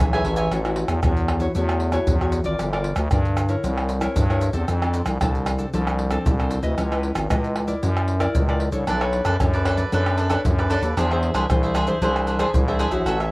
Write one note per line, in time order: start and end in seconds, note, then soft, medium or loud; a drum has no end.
0.00 0.23 B1 medium
0.00 0.49 E3 medium
0.00 0.12 C#5 medium
0.00 0.11 E5 medium
0.00 0.11 G#5 medium
0.00 pandeiro medium
0.00 tamborim medium
0.00 shaker medium
0.00 surdo loud
0.13 0.48 C#4 medium
0.13 0.48 G#4 medium
0.13 0.49 B4 medium
0.13 0.25 C#5 soft
0.13 0.25 E5 medium
0.13 0.25 G#5 medium
0.13 pandeiro soft
0.13 tamborim medium
0.13 shaker soft
0.24 0.48 A1 loud
0.24 0.37 A4 medium
0.24 0.38 C#5 soft
0.24 0.37 E5 medium
0.24 0.36 G#5 medium
0.24 pandeiro medium
0.36 0.51 C#5 medium
0.36 0.50 E5 medium
0.36 0.50 G#5 medium
0.36 pandeiro medium
0.36 shaker medium
0.52 0.85 A1 medium
0.52 1.01 A3 medium
0.52 0.60 E4 medium
0.52 0.60 F#4 soft
0.52 0.60 C#5 medium
0.52 pandeiro medium
0.52 tamborim medium
0.52 shaker medium
0.52 surdo soft
0.65 1.00 E4 medium
0.65 1.00 F#4 medium
0.65 1.00 C#5 medium
0.65 pandeiro soft
0.65 tamborim medium
0.65 shaker soft
0.76 pandeiro medium
0.88 1.00 E2 medium
0.88 pandeiro medium
0.88 tamborim medium
0.88 shaker medium
0.88 surdo soft
1.03 1.48 E2 medium
1.03 1.53 E3 medium
1.03 1.39 E4 medium
1.03 1.39 F#4 medium
1.03 1.39 C#5 medium
1.03 pandeiro medium
1.03 tamborim medium
1.03 shaker medium
1.03 surdo loud
1.17 pandeiro soft
1.17 shaker soft
1.28 pandeiro medium
1.28 tamborim medium
1.28 surdo soft
1.40 1.51 E4 medium
1.40 1.51 F#4 medium
1.40 1.51 C#5 medium
1.40 pandeiro medium
1.40 shaker medium
1.40 surdo soft
1.55 2.00 E2 loud
1.55 2.05 A3 medium
1.55 1.91 E4 medium
1.55 1.91 F#4 medium
1.55 1.91 C#5 medium
1.55 pandeiro medium
1.55 shaker medium
1.55 surdo medium
1.69 pandeiro soft
1.69 tamborim medium
1.69 shaker soft
1.80 pandeiro medium
1.92 2.16 E4 medium
1.92 2.16 F#4 medium
1.92 2.16 C#5 medium
1.92 pandeiro medium
1.92 tamborim medium
1.92 shaker medium
1.92 surdo soft
2.07 2.41 E2 medium
2.07 2.58 E3 soft
2.07 pandeiro medium
2.07 shaker medium
2.07 surdo loud
2.21 2.43 E4 medium
2.21 2.43 F#4 medium
2.21 2.43 C#5 medium
2.21 pandeiro soft
2.21 tamborim medium
2.21 shaker soft
2.32 pandeiro medium
2.32 shaker medium
2.44 2.56 G#1 medium
2.44 2.68 F4 medium
2.44 2.68 A#4 medium
2.44 2.68 D5 medium
2.44 pandeiro medium
2.44 shaker medium
2.44 surdo soft
2.59 2.93 G1 medium
2.59 3.09 G3 medium
2.59 pandeiro medium
2.59 tamborim medium
2.59 shaker medium
2.59 surdo medium
2.73 3.08 F4 medium
2.73 3.08 A#4 medium
2.73 3.09 D5 medium
2.73 pandeiro soft
2.73 tamborim medium
2.73 shaker soft
2.84 pandeiro medium
2.96 3.09 D2 loud
2.96 pandeiro medium
2.96 tamborim medium
2.96 shaker medium
2.96 surdo soft
3.11 3.56 G2 medium
3.11 3.62 D3 medium
3.11 3.37 F4 soft
3.11 3.37 A#4 medium
3.11 3.37 D5 medium
3.11 pandeiro medium
3.11 tamborim medium
3.11 shaker medium
3.11 surdo loud
3.25 pandeiro soft
3.25 shaker soft
3.37 pandeiro medium
3.37 tamborim medium
3.37 shaker medium
3.49 3.98 E4 medium
3.49 3.98 A#4 medium
3.49 3.99 C#5 medium
3.49 pandeiro medium
3.49 shaker medium
3.49 surdo soft
3.64 4.08 C2 loud
3.64 4.14 C4 medium
3.64 pandeiro medium
3.64 shaker medium
3.64 surdo medium
3.77 pandeiro soft
3.77 tamborim medium
3.77 shaker soft
3.89 pandeiro medium
3.89 shaker medium
4.01 4.24 E4 medium
4.01 4.25 A#4 medium
4.01 4.25 C#5 medium
4.01 pandeiro medium
4.01 tamborim medium
4.01 shaker medium
4.01 surdo soft
4.16 4.50 G2 medium
4.16 4.66 G3 medium
4.16 pandeiro medium
4.16 shaker medium
4.16 surdo loud
4.30 4.52 E4 medium
4.30 4.52 A#4 medium
4.30 4.52 C#5 medium
4.30 pandeiro soft
4.30 tamborim medium
4.30 shaker soft
4.41 pandeiro medium
4.41 shaker medium
4.53 4.66 E2 medium
4.53 4.77 C4 medium
4.53 4.77 D4 medium
4.53 4.77 A4 medium
4.53 pandeiro medium
4.53 shaker medium
4.53 surdo soft
4.68 5.02 F2 medium
4.68 5.19 F3 medium
4.68 pandeiro medium
4.68 tamborim medium
4.68 shaker medium
4.68 surdo medium
4.82 5.17 C4 medium
4.82 5.17 D4 medium
4.82 5.18 A4 medium
4.82 pandeiro soft
4.82 tamborim medium
4.82 shaker soft
4.94 pandeiro medium
4.94 shaker medium
5.06 5.18 C2 loud
5.06 pandeiro medium
5.06 tamborim medium
5.06 shaker medium
5.06 surdo soft
5.20 5.66 C2 medium
5.20 5.71 C3 medium
5.20 5.45 C4 medium
5.20 5.46 D4 medium
5.20 5.46 A4 medium
5.20 pandeiro medium
5.20 tamborim medium
5.20 shaker medium
5.20 surdo medium
5.35 pandeiro soft
5.35 shaker soft
5.46 pandeiro medium
5.46 tamborim medium
5.46 shaker medium
5.58 5.68 C4 medium
5.58 5.68 D4 soft
5.58 5.69 A4 medium
5.58 pandeiro soft
5.58 shaker medium
5.58 surdo soft
5.73 6.18 C2 loud
5.73 6.23 F3 medium
5.73 6.09 C4 medium
5.73 6.09 D4 medium
5.73 6.09 A4 medium
5.73 pandeiro medium
5.73 shaker medium
5.73 surdo soft
5.87 pandeiro soft
5.87 tamborim medium
5.87 shaker soft
5.99 pandeiro medium
6.10 6.34 C4 medium
6.10 6.34 D4 medium
6.10 6.34 A4 medium
6.10 pandeiro medium
6.10 tamborim medium
6.10 shaker medium
6.10 surdo soft
6.25 6.59 C2 medium
6.25 6.75 C3 medium
6.25 pandeiro medium
6.25 shaker medium
6.25 surdo loud
6.39 6.61 C4 medium
6.39 6.61 D4 medium
6.39 6.62 A4 medium
6.39 pandeiro soft
6.39 tamborim medium
6.39 shaker soft
6.51 pandeiro medium
6.51 shaker medium
6.63 6.75 D2 medium
6.63 6.86 E4 medium
6.63 6.86 B4 medium
6.63 6.86 D#5 medium
6.63 pandeiro medium
6.63 shaker medium
6.63 surdo soft
6.78 7.12 C#2 medium
6.78 7.28 C#4 medium
6.78 pandeiro medium
6.78 tamborim medium
6.78 shaker medium
6.78 surdo soft
6.91 7.27 E4 medium
6.91 7.27 B4 medium
6.91 7.27 D#5 medium
6.91 pandeiro soft
6.91 tamborim medium
6.91 shaker soft
7.03 pandeiro medium
7.15 7.28 G#1 medium
7.15 pandeiro medium
7.15 tamborim medium
7.15 shaker medium
7.15 surdo soft
7.30 7.75 C#2 medium
7.30 7.80 G#3 medium
7.30 7.65 E4 medium
7.30 7.66 B4 medium
7.30 7.66 D#5 medium
7.30 pandeiro medium
7.30 tamborim medium
7.30 shaker medium
7.30 surdo loud
7.44 pandeiro soft
7.44 shaker soft
7.56 pandeiro medium
7.56 tamborim medium
7.67 8.17 E4 medium
7.67 8.17 A#4 soft
7.67 8.17 D5 medium
7.67 pandeiro medium
7.67 shaker medium
7.67 surdo soft
7.83 8.28 F#2 loud
7.83 8.33 F#3 medium
7.83 pandeiro medium
7.83 shaker medium
7.83 surdo soft
7.97 pandeiro soft
7.97 tamborim medium
7.97 shaker soft
8.08 pandeiro medium
8.20 8.43 E4 medium
8.20 8.44 A#4 medium
8.20 8.44 D5 medium
8.20 pandeiro medium
8.20 tamborim medium
8.20 shaker medium
8.20 surdo soft
8.35 8.69 C#2 medium
8.35 8.85 C#3 medium
8.35 pandeiro medium
8.35 shaker medium
8.35 surdo loud
8.49 8.71 E4 medium
8.49 8.71 A#4 medium
8.49 8.71 D5 medium
8.49 pandeiro soft
8.49 tamborim medium
8.49 shaker soft
8.60 pandeiro medium
8.72 8.85 C2 medium
8.72 8.96 D4 medium
8.72 8.96 A4 medium
8.72 8.96 C#5 medium
8.72 pandeiro medium
8.72 shaker medium
8.72 surdo soft
8.87 9.21 B1 medium
8.87 9.38 B3 medium
8.87 9.00 D4 medium
8.87 9.00 A4 medium
8.87 9.01 B4 medium
8.87 9.00 D5 medium
8.87 pandeiro medium
8.87 tamborim medium
8.87 shaker medium
8.87 surdo soft
9.01 9.36 D4 medium
9.01 9.36 A4 medium
9.01 9.25 A4 soft
9.01 9.25 B4 soft
9.01 9.37 C#5 medium
9.01 9.25 D5 soft
9.01 pandeiro soft
9.01 tamborim medium
9.01 shaker soft
9.13 pandeiro medium
9.25 9.37 F#2 medium
9.25 9.35 D4 medium
9.25 9.36 A4 medium
9.25 9.36 B4 medium
9.25 9.36 D5 medium
9.25 pandeiro medium
9.25 tamborim medium
9.25 shaker medium
9.25 surdo soft
9.39 9.85 F#2 medium
9.39 9.90 F#3 medium
9.39 9.62 D4 medium
9.39 9.62 A4 medium
9.39 9.63 C#5 medium
9.39 pandeiro medium
9.39 tamborim medium
9.39 shaker medium
9.39 surdo loud
9.53 9.65 A4 soft
9.53 9.66 B4 soft
9.53 9.66 D5 medium
9.53 pandeiro soft
9.53 shaker soft
9.65 9.81 D4 medium
9.65 9.78 D4 medium
9.65 9.81 A4 medium
9.65 9.78 A4 medium
9.65 9.77 B4 medium
9.65 9.81 C#5 medium
9.65 9.76 D5 medium
9.65 pandeiro medium
9.65 tamborim medium
9.65 surdo soft
9.77 9.92 A4 soft
9.77 9.91 B4 soft
9.77 9.91 D5 soft
9.77 pandeiro medium
9.77 shaker medium
9.77 surdo soft
9.92 10.37 F#2 loud
9.92 10.42 B3 medium
9.92 10.17 D4 medium
9.92 10.16 D4 medium
9.92 10.17 A4 medium
9.92 10.18 B4 medium
9.92 10.18 C#5 medium
9.92 10.19 D5 medium
9.92 pandeiro medium
9.92 shaker medium
9.92 surdo medium
10.06 pandeiro soft
10.06 tamborim medium
10.06 shaker soft
10.18 10.28 D4 soft
10.18 10.29 A4 medium
10.18 10.29 B4 medium
10.18 10.30 D5 medium
10.18 pandeiro medium
10.18 shaker medium
10.29 10.40 D4 medium
10.29 10.66 D4 medium
10.29 10.40 A4 medium
10.29 10.66 A4 medium
10.29 10.40 B4 medium
10.29 10.67 C#5 medium
10.29 10.41 D5 medium
10.29 pandeiro medium
10.29 tamborim medium
10.29 shaker medium
10.29 surdo soft
10.45 10.78 F#2 medium
10.45 10.95 F#3 medium
10.45 pandeiro medium
10.45 shaker medium
10.45 surdo loud
10.59 10.69 A4 soft
10.59 10.70 B4 soft
10.59 10.70 D5 medium
10.59 pandeiro soft
10.59 tamborim medium
10.59 shaker soft
10.70 10.83 D4 medium
10.70 10.88 D4 medium
10.70 10.83 A4 medium
10.70 10.88 A4 medium
10.70 10.82 B4 medium
10.70 10.88 C#5 medium
10.70 10.81 D5 medium
10.70 pandeiro medium
10.70 shaker medium
10.82 10.94 D#2 medium
10.82 10.96 A4 soft
10.82 10.96 B4 soft
10.82 10.95 D5 soft
10.82 pandeiro medium
10.82 shaker medium
10.82 surdo soft
10.97 11.31 E2 loud
10.97 11.47 E3 medium
10.97 11.09 D4 medium
10.97 11.06 D4 medium
10.97 11.10 G#4 medium
10.97 11.06 G#4 medium
10.97 11.10 C5 medium
10.97 11.06 C5 medium
10.97 11.10 E5 medium
10.97 pandeiro medium
10.97 tamborim medium
10.97 shaker medium
10.97 surdo medium
11.11 11.46 D4 medium
11.11 11.47 G#4 medium
11.11 11.33 G#4 soft
11.11 11.34 C5 soft
11.11 11.47 C5 medium
11.11 11.34 E5 soft
11.11 pandeiro soft
11.11 tamborim medium
11.11 shaker soft
11.23 pandeiro medium
11.34 11.47 C2 loud
11.34 11.44 D4 medium
11.34 11.45 G#4 medium
11.34 11.45 C5 medium
11.34 11.45 E5 medium
11.34 pandeiro medium
11.34 tamborim medium
11.34 shaker medium
11.34 surdo soft
11.49 11.94 C2 medium
11.49 12.00 E3 medium
11.49 11.74 D4 medium
11.49 11.75 G#4 medium
11.49 11.75 C5 medium
11.49 pandeiro medium
11.49 tamborim medium
11.49 shaker medium
11.49 surdo loud
11.63 11.74 G#4 soft
11.63 11.75 C5 soft
11.63 11.75 E5 medium
11.63 pandeiro soft
11.63 shaker soft
11.74 11.87 D4 medium
11.74 11.88 G#4 medium
11.74 11.86 C5 medium
11.74 11.85 E5 medium
11.74 pandeiro medium
11.74 tamborim medium
11.74 shaker medium
11.86 11.97 D4 medium
11.86 11.97 G#4 medium
11.86 12.01 G#4 soft
11.86 12.00 C5 soft
11.86 11.97 C5 medium
11.86 12.00 E5 soft
11.86 pandeiro soft
11.86 shaker medium
11.86 surdo soft
12.02 12.46 C2 loud
12.02 12.52 E3 medium
12.02 12.26 D4 medium
12.02 12.37 D4 medium
12.02 12.37 G#4 medium
12.02 12.27 G#4 medium
12.02 12.38 C5 medium
12.02 12.27 C5 medium
12.02 12.28 E5 medium
12.02 pandeiro medium
12.02 shaker medium
12.02 surdo medium
12.16 pandeiro soft
12.16 tamborim medium
12.16 shaker soft
12.27 12.38 D4 medium
12.27 12.39 G#4 soft
12.27 12.39 C5 soft
12.27 12.39 E5 medium
12.27 pandeiro medium
12.27 shaker medium
12.39 12.62 D4 medium
12.39 12.49 D4 medium
12.39 12.62 G#4 medium
12.39 12.50 G#4 medium
12.39 12.62 C5 medium
12.39 12.50 C5 medium
12.39 12.50 E5 medium
12.39 pandeiro medium
12.39 tamborim medium
12.39 shaker medium
12.39 surdo soft
12.54 12.87 C2 medium
12.54 13.04 E3 medium
12.54 pandeiro medium
12.54 shaker medium
12.54 surdo loud
12.68 12.90 D4 medium
12.68 12.90 G#4 medium
12.68 12.79 G#4 soft
12.68 12.90 C5 medium
12.68 12.79 C5 soft
12.68 12.80 E5 soft
12.68 pandeiro soft
12.68 tamborim medium
12.68 shaker soft
12.79 12.92 D4 medium
12.79 12.92 G#4 medium
12.79 12.91 C5 medium
12.79 12.90 E5 medium
12.79 pandeiro medium
12.79 shaker medium
12.91 13.03 A#1 medium
12.91 13.15 E4 medium
12.91 13.15 F#4 medium
12.91 13.05 G#4 soft
12.91 13.05 C5 soft
12.91 13.15 C#5 medium
12.91 13.04 E5 medium
12.91 pandeiro medium
12.91 shaker medium
12.91 surdo soft
13.06 13.31 A1 medium
13.06 13.31 A3 medium
13.06 13.18 F#4 medium
13.06 13.19 A4 medium
13.06 13.19 C#5 medium
13.06 13.19 E5 medium
13.06 pandeiro medium
13.06 tamborim medium
13.06 shaker medium
13.06 surdo soft
13.20 13.31 A4 soft
13.20 13.31 C#5 soft
13.20 13.31 E5 soft
13.20 pandeiro soft
13.20 tamborim medium
13.20 shaker soft